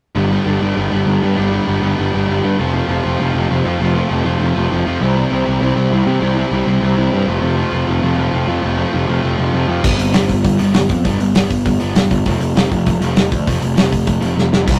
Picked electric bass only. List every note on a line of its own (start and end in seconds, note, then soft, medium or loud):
0.16 0.36 G1 medium
0.46 0.57 G1 medium
0.62 0.72 G1 medium
0.77 0.87 G1 medium
0.93 1.03 G1 medium
1.07 1.17 G1 medium
1.23 1.33 G2 medium
1.37 1.58 G1 medium
1.68 1.78 G1 medium
1.82 1.93 G1 medium
1.99 2.09 G1 medium
2.15 2.25 G1 medium
2.29 2.39 G1 medium
2.45 2.55 G2 medium
2.60 2.80 F1 medium
2.88 2.99 F1 medium
3.06 3.15 F1 medium
3.20 3.30 F1 medium
3.35 3.45 F1 medium
3.50 3.60 F1 medium
3.65 3.75 F2 medium
3.79 4.00 F1 medium
4.11 4.21 F1 medium
4.26 4.36 F1 medium
4.40 4.51 F1 medium
4.56 4.66 F1 medium
4.72 4.82 F1 medium
4.87 4.97 F2 medium
5.01 5.22 C2 medium
5.32 5.42 C2 medium
5.48 5.57 C2 medium
5.61 5.71 C2 medium
5.76 5.86 C2 medium
5.90 6.01 C2 medium
6.07 6.17 C3 medium
6.21 6.42 C2 medium
6.51 6.62 C2 medium
6.66 6.77 C2 medium
6.82 6.92 C2 medium
6.97 7.08 C2 medium
7.13 7.23 G2 medium
7.28 7.38 F1 medium
7.42 7.63 F1 medium
7.73 7.83 F1 medium
7.88 7.98 F1 medium
8.02 8.13 F1 medium
8.16 8.27 F1 medium
8.33 8.43 F1 medium
8.48 8.58 F2 medium
8.63 8.84 F1 medium
8.94 9.04 F1 medium
9.08 9.18 F1 medium
9.24 9.34 F1 medium
9.39 9.49 F1 medium
9.53 9.64 F1 medium
9.68 9.79 F2 medium
9.84 9.98 G1 medium
9.99 10.13 G1 medium
10.15 10.28 G1 medium
10.30 10.43 G1 medium
10.45 10.58 G1 medium
10.60 10.74 G1 medium
10.75 10.89 G1 medium
10.90 11.04 F2 medium
11.05 11.19 G1 medium
11.20 11.33 G1 medium
11.36 11.63 G1 medium
11.66 11.79 G1 medium
11.80 11.94 G1 medium
11.95 12.09 G1 medium
12.11 12.25 G1 medium
12.26 12.39 F1 medium
12.39 12.54 F1 medium
12.55 12.69 F1 medium
12.71 12.85 F1 medium
12.87 13.00 F1 medium
13.01 13.15 F1 medium
13.16 13.30 F1 medium
13.32 13.45 D2 medium
13.47 13.61 F1 medium
13.62 13.75 F1 medium
13.78 14.05 F1 medium
14.08 14.20 F1 medium
14.21 14.35 F1 medium
14.36 14.50 F1 medium
14.52 14.66 F1 medium
14.67 14.79 C2 medium